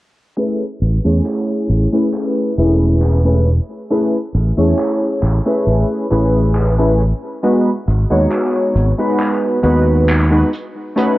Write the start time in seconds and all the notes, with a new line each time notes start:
0.37 A3 C#4 E4 G#4 B4, closed hi-hat
0.82 A1, closed hi-hat
1.04 E2 A3 C#4 E4 G#4 C#5
1.26 clap, closed hi-hat
1.69 A1, closed hi-hat
1.92 A3 C#4 E4 G#4 B4
2.14 clap, closed hi-hat
2.57 E1 A3 C#4 E4 G#4 B4, closed hi-hat
3.02 clap, closed hi-hat
3.24 A3 C#4 E4 G#4 B4
3.47 closed hi-hat
3.90 A3 C#4 E4 G#4 B4, closed hi-hat
4.35 A1, closed hi-hat
4.57 E2 A3 C#4 E4 G#4 C#5
4.79 clap, closed hi-hat
5.23 A1, clap, closed hi-hat
5.45 A3 C#4 E4 G#4 B4
5.67 A1, closed hi-hat
6.10 A1 A3 C#4 E4 G#4 B4, closed hi-hat
6.55 clap, closed hi-hat
6.78 A3 C#4 E4 G#4 B4
7.00 closed hi-hat
7.43 G#3 B3 D#4 F#4 B4, closed hi-hat
7.87 G#1, closed hi-hat
8.10 D#2 G#3 B3 D#4 F#4 C#5
8.31 clap, closed hi-hat
8.75 G#1, closed hi-hat
8.98 G#3 B3 D#4 F#4 B4
9.20 clap, closed hi-hat
9.63 D#2 G#3 B3 D#4 F#4 B4, closed hi-hat
10.09 clap, closed hi-hat
10.30 G#3 B3 D#4 F#4 B4
10.53 closed hi-hat
10.96 A3 C#4 D#4 F#4 B4, closed hi-hat